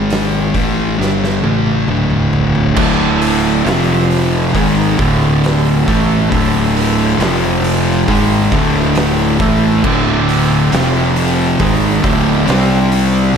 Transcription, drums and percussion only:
0, 0, Header, 1, 2, 480
1, 0, Start_track
1, 0, Key_signature, -1, "minor"
1, 0, Tempo, 888889
1, 1495, Time_signature, 4, 2, 24, 8
1, 2931, Tempo, 881057
1, 7258, End_track
2, 0, Start_track
2, 0, Title_t, "Drums"
2, 56, Note_on_c, 9, 46, 82
2, 69, Note_on_c, 9, 38, 121
2, 110, Note_off_c, 9, 46, 0
2, 123, Note_off_c, 9, 38, 0
2, 295, Note_on_c, 9, 36, 94
2, 298, Note_on_c, 9, 46, 56
2, 349, Note_off_c, 9, 36, 0
2, 352, Note_off_c, 9, 46, 0
2, 548, Note_on_c, 9, 38, 66
2, 602, Note_off_c, 9, 38, 0
2, 669, Note_on_c, 9, 38, 55
2, 723, Note_off_c, 9, 38, 0
2, 776, Note_on_c, 9, 48, 74
2, 830, Note_off_c, 9, 48, 0
2, 901, Note_on_c, 9, 48, 63
2, 955, Note_off_c, 9, 48, 0
2, 1016, Note_on_c, 9, 47, 82
2, 1070, Note_off_c, 9, 47, 0
2, 1135, Note_on_c, 9, 45, 72
2, 1189, Note_off_c, 9, 45, 0
2, 1259, Note_on_c, 9, 43, 98
2, 1313, Note_off_c, 9, 43, 0
2, 1379, Note_on_c, 9, 43, 82
2, 1433, Note_off_c, 9, 43, 0
2, 1493, Note_on_c, 9, 49, 119
2, 1496, Note_on_c, 9, 36, 122
2, 1547, Note_off_c, 9, 49, 0
2, 1550, Note_off_c, 9, 36, 0
2, 1736, Note_on_c, 9, 46, 69
2, 1790, Note_off_c, 9, 46, 0
2, 1978, Note_on_c, 9, 46, 96
2, 1991, Note_on_c, 9, 38, 126
2, 2032, Note_off_c, 9, 46, 0
2, 2045, Note_off_c, 9, 38, 0
2, 2218, Note_on_c, 9, 46, 58
2, 2272, Note_off_c, 9, 46, 0
2, 2455, Note_on_c, 9, 36, 100
2, 2455, Note_on_c, 9, 46, 91
2, 2509, Note_off_c, 9, 36, 0
2, 2509, Note_off_c, 9, 46, 0
2, 2695, Note_on_c, 9, 36, 113
2, 2698, Note_on_c, 9, 46, 60
2, 2749, Note_off_c, 9, 36, 0
2, 2752, Note_off_c, 9, 46, 0
2, 2937, Note_on_c, 9, 46, 87
2, 2950, Note_on_c, 9, 38, 127
2, 2991, Note_off_c, 9, 46, 0
2, 3004, Note_off_c, 9, 38, 0
2, 3177, Note_on_c, 9, 36, 112
2, 3180, Note_on_c, 9, 46, 63
2, 3231, Note_off_c, 9, 36, 0
2, 3235, Note_off_c, 9, 46, 0
2, 3417, Note_on_c, 9, 36, 102
2, 3419, Note_on_c, 9, 46, 84
2, 3472, Note_off_c, 9, 36, 0
2, 3473, Note_off_c, 9, 46, 0
2, 3660, Note_on_c, 9, 46, 71
2, 3714, Note_off_c, 9, 46, 0
2, 3897, Note_on_c, 9, 46, 102
2, 3910, Note_on_c, 9, 38, 127
2, 3951, Note_off_c, 9, 46, 0
2, 3965, Note_off_c, 9, 38, 0
2, 4137, Note_on_c, 9, 46, 65
2, 4191, Note_off_c, 9, 46, 0
2, 4377, Note_on_c, 9, 36, 106
2, 4377, Note_on_c, 9, 46, 89
2, 4431, Note_off_c, 9, 36, 0
2, 4432, Note_off_c, 9, 46, 0
2, 4616, Note_on_c, 9, 36, 119
2, 4616, Note_on_c, 9, 46, 73
2, 4670, Note_off_c, 9, 46, 0
2, 4671, Note_off_c, 9, 36, 0
2, 4851, Note_on_c, 9, 46, 89
2, 4864, Note_on_c, 9, 38, 119
2, 4905, Note_off_c, 9, 46, 0
2, 4918, Note_off_c, 9, 38, 0
2, 5094, Note_on_c, 9, 46, 64
2, 5095, Note_on_c, 9, 36, 116
2, 5149, Note_off_c, 9, 36, 0
2, 5149, Note_off_c, 9, 46, 0
2, 5335, Note_on_c, 9, 36, 118
2, 5335, Note_on_c, 9, 49, 106
2, 5390, Note_off_c, 9, 36, 0
2, 5390, Note_off_c, 9, 49, 0
2, 5578, Note_on_c, 9, 46, 69
2, 5633, Note_off_c, 9, 46, 0
2, 5815, Note_on_c, 9, 46, 92
2, 5828, Note_on_c, 9, 38, 127
2, 5870, Note_off_c, 9, 46, 0
2, 5883, Note_off_c, 9, 38, 0
2, 6054, Note_on_c, 9, 46, 66
2, 6109, Note_off_c, 9, 46, 0
2, 6291, Note_on_c, 9, 46, 85
2, 6293, Note_on_c, 9, 36, 111
2, 6345, Note_off_c, 9, 46, 0
2, 6348, Note_off_c, 9, 36, 0
2, 6532, Note_on_c, 9, 46, 64
2, 6533, Note_on_c, 9, 36, 117
2, 6587, Note_off_c, 9, 46, 0
2, 6588, Note_off_c, 9, 36, 0
2, 6772, Note_on_c, 9, 46, 97
2, 6785, Note_on_c, 9, 38, 124
2, 6826, Note_off_c, 9, 46, 0
2, 6839, Note_off_c, 9, 38, 0
2, 7011, Note_on_c, 9, 46, 67
2, 7066, Note_off_c, 9, 46, 0
2, 7258, End_track
0, 0, End_of_file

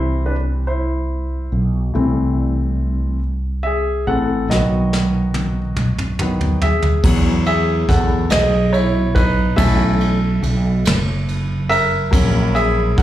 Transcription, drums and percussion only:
0, 0, Header, 1, 2, 480
1, 0, Start_track
1, 0, Key_signature, 4, "major"
1, 0, Tempo, 848656
1, 1102, Time_signature, 6, 3, 24, 8
1, 7367, End_track
2, 0, Start_track
2, 0, Title_t, "Drums"
2, 2550, Note_on_c, 9, 38, 45
2, 2607, Note_off_c, 9, 38, 0
2, 2789, Note_on_c, 9, 38, 53
2, 2845, Note_off_c, 9, 38, 0
2, 3022, Note_on_c, 9, 48, 62
2, 3078, Note_off_c, 9, 48, 0
2, 3260, Note_on_c, 9, 47, 66
2, 3317, Note_off_c, 9, 47, 0
2, 3385, Note_on_c, 9, 45, 56
2, 3441, Note_off_c, 9, 45, 0
2, 3501, Note_on_c, 9, 45, 71
2, 3558, Note_off_c, 9, 45, 0
2, 3624, Note_on_c, 9, 43, 64
2, 3680, Note_off_c, 9, 43, 0
2, 3742, Note_on_c, 9, 43, 72
2, 3798, Note_off_c, 9, 43, 0
2, 3860, Note_on_c, 9, 43, 68
2, 3917, Note_off_c, 9, 43, 0
2, 3979, Note_on_c, 9, 49, 86
2, 3980, Note_on_c, 9, 36, 105
2, 4036, Note_off_c, 9, 49, 0
2, 4037, Note_off_c, 9, 36, 0
2, 4219, Note_on_c, 9, 51, 38
2, 4275, Note_off_c, 9, 51, 0
2, 4461, Note_on_c, 9, 36, 83
2, 4461, Note_on_c, 9, 51, 44
2, 4468, Note_on_c, 9, 38, 34
2, 4518, Note_off_c, 9, 36, 0
2, 4518, Note_off_c, 9, 51, 0
2, 4524, Note_off_c, 9, 38, 0
2, 4694, Note_on_c, 9, 51, 64
2, 4705, Note_on_c, 9, 38, 92
2, 4751, Note_off_c, 9, 51, 0
2, 4762, Note_off_c, 9, 38, 0
2, 4942, Note_on_c, 9, 51, 37
2, 4998, Note_off_c, 9, 51, 0
2, 5179, Note_on_c, 9, 36, 80
2, 5182, Note_on_c, 9, 51, 44
2, 5236, Note_off_c, 9, 36, 0
2, 5239, Note_off_c, 9, 51, 0
2, 5417, Note_on_c, 9, 51, 89
2, 5419, Note_on_c, 9, 36, 111
2, 5474, Note_off_c, 9, 51, 0
2, 5476, Note_off_c, 9, 36, 0
2, 5659, Note_on_c, 9, 51, 39
2, 5715, Note_off_c, 9, 51, 0
2, 5901, Note_on_c, 9, 51, 43
2, 5958, Note_off_c, 9, 51, 0
2, 6138, Note_on_c, 9, 51, 72
2, 6149, Note_on_c, 9, 38, 98
2, 6195, Note_off_c, 9, 51, 0
2, 6206, Note_off_c, 9, 38, 0
2, 6383, Note_on_c, 9, 51, 39
2, 6440, Note_off_c, 9, 51, 0
2, 6627, Note_on_c, 9, 51, 42
2, 6683, Note_off_c, 9, 51, 0
2, 6860, Note_on_c, 9, 36, 109
2, 6861, Note_on_c, 9, 51, 84
2, 6916, Note_off_c, 9, 36, 0
2, 6917, Note_off_c, 9, 51, 0
2, 7103, Note_on_c, 9, 51, 37
2, 7159, Note_off_c, 9, 51, 0
2, 7341, Note_on_c, 9, 36, 84
2, 7341, Note_on_c, 9, 51, 42
2, 7367, Note_off_c, 9, 36, 0
2, 7367, Note_off_c, 9, 51, 0
2, 7367, End_track
0, 0, End_of_file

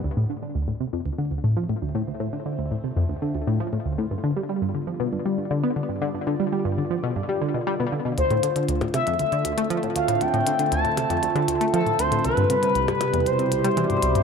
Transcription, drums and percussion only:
0, 0, Header, 1, 3, 480
1, 0, Start_track
1, 0, Tempo, 508475
1, 40, Time_signature, 4, 2, 24, 8
1, 13433, End_track
2, 0, Start_track
2, 0, Title_t, "Percussion blips"
2, 8319, Note_on_c, 9, 63, 65
2, 8413, Note_off_c, 9, 63, 0
2, 8439, Note_on_c, 9, 63, 63
2, 8533, Note_off_c, 9, 63, 0
2, 10359, Note_on_c, 9, 63, 63
2, 10454, Note_off_c, 9, 63, 0
2, 10721, Note_on_c, 9, 63, 51
2, 10815, Note_off_c, 9, 63, 0
2, 12161, Note_on_c, 9, 63, 72
2, 12255, Note_off_c, 9, 63, 0
2, 12279, Note_on_c, 9, 63, 70
2, 12373, Note_off_c, 9, 63, 0
2, 13433, End_track
3, 0, Start_track
3, 0, Title_t, "Drums"
3, 7719, Note_on_c, 9, 42, 54
3, 7813, Note_off_c, 9, 42, 0
3, 7840, Note_on_c, 9, 42, 26
3, 7935, Note_off_c, 9, 42, 0
3, 7960, Note_on_c, 9, 42, 91
3, 8054, Note_off_c, 9, 42, 0
3, 8079, Note_on_c, 9, 42, 50
3, 8174, Note_off_c, 9, 42, 0
3, 8199, Note_on_c, 9, 42, 52
3, 8293, Note_off_c, 9, 42, 0
3, 8319, Note_on_c, 9, 42, 27
3, 8413, Note_off_c, 9, 42, 0
3, 8439, Note_on_c, 9, 42, 89
3, 8533, Note_off_c, 9, 42, 0
3, 8560, Note_on_c, 9, 42, 46
3, 8655, Note_off_c, 9, 42, 0
3, 8679, Note_on_c, 9, 42, 52
3, 8774, Note_off_c, 9, 42, 0
3, 8800, Note_on_c, 9, 42, 26
3, 8895, Note_off_c, 9, 42, 0
3, 8920, Note_on_c, 9, 42, 92
3, 9014, Note_off_c, 9, 42, 0
3, 9040, Note_on_c, 9, 42, 53
3, 9135, Note_off_c, 9, 42, 0
3, 9161, Note_on_c, 9, 42, 50
3, 9255, Note_off_c, 9, 42, 0
3, 9280, Note_on_c, 9, 42, 25
3, 9374, Note_off_c, 9, 42, 0
3, 9399, Note_on_c, 9, 42, 90
3, 9493, Note_off_c, 9, 42, 0
3, 9519, Note_on_c, 9, 42, 52
3, 9614, Note_off_c, 9, 42, 0
3, 9638, Note_on_c, 9, 42, 52
3, 9733, Note_off_c, 9, 42, 0
3, 9760, Note_on_c, 9, 42, 25
3, 9854, Note_off_c, 9, 42, 0
3, 9880, Note_on_c, 9, 42, 83
3, 9974, Note_off_c, 9, 42, 0
3, 9999, Note_on_c, 9, 42, 52
3, 10094, Note_off_c, 9, 42, 0
3, 10119, Note_on_c, 9, 42, 51
3, 10213, Note_off_c, 9, 42, 0
3, 10240, Note_on_c, 9, 42, 25
3, 10334, Note_off_c, 9, 42, 0
3, 10359, Note_on_c, 9, 42, 87
3, 10454, Note_off_c, 9, 42, 0
3, 10480, Note_on_c, 9, 42, 47
3, 10575, Note_off_c, 9, 42, 0
3, 10599, Note_on_c, 9, 42, 54
3, 10694, Note_off_c, 9, 42, 0
3, 10721, Note_on_c, 9, 42, 26
3, 10815, Note_off_c, 9, 42, 0
3, 10840, Note_on_c, 9, 42, 90
3, 10934, Note_off_c, 9, 42, 0
3, 10960, Note_on_c, 9, 42, 52
3, 11055, Note_off_c, 9, 42, 0
3, 11081, Note_on_c, 9, 42, 49
3, 11175, Note_off_c, 9, 42, 0
3, 11201, Note_on_c, 9, 42, 24
3, 11295, Note_off_c, 9, 42, 0
3, 11320, Note_on_c, 9, 42, 88
3, 11415, Note_off_c, 9, 42, 0
3, 11440, Note_on_c, 9, 42, 51
3, 11535, Note_off_c, 9, 42, 0
3, 11560, Note_on_c, 9, 42, 51
3, 11654, Note_off_c, 9, 42, 0
3, 11680, Note_on_c, 9, 42, 25
3, 11774, Note_off_c, 9, 42, 0
3, 11799, Note_on_c, 9, 42, 86
3, 11894, Note_off_c, 9, 42, 0
3, 11920, Note_on_c, 9, 42, 49
3, 12015, Note_off_c, 9, 42, 0
3, 12040, Note_on_c, 9, 42, 49
3, 12134, Note_off_c, 9, 42, 0
3, 12161, Note_on_c, 9, 42, 25
3, 12255, Note_off_c, 9, 42, 0
3, 12279, Note_on_c, 9, 42, 85
3, 12373, Note_off_c, 9, 42, 0
3, 12400, Note_on_c, 9, 42, 48
3, 12495, Note_off_c, 9, 42, 0
3, 12521, Note_on_c, 9, 42, 54
3, 12616, Note_off_c, 9, 42, 0
3, 12642, Note_on_c, 9, 42, 25
3, 12736, Note_off_c, 9, 42, 0
3, 12760, Note_on_c, 9, 42, 83
3, 12855, Note_off_c, 9, 42, 0
3, 12881, Note_on_c, 9, 42, 49
3, 12975, Note_off_c, 9, 42, 0
3, 13000, Note_on_c, 9, 42, 50
3, 13094, Note_off_c, 9, 42, 0
3, 13120, Note_on_c, 9, 42, 25
3, 13214, Note_off_c, 9, 42, 0
3, 13239, Note_on_c, 9, 42, 90
3, 13334, Note_off_c, 9, 42, 0
3, 13360, Note_on_c, 9, 42, 50
3, 13433, Note_off_c, 9, 42, 0
3, 13433, End_track
0, 0, End_of_file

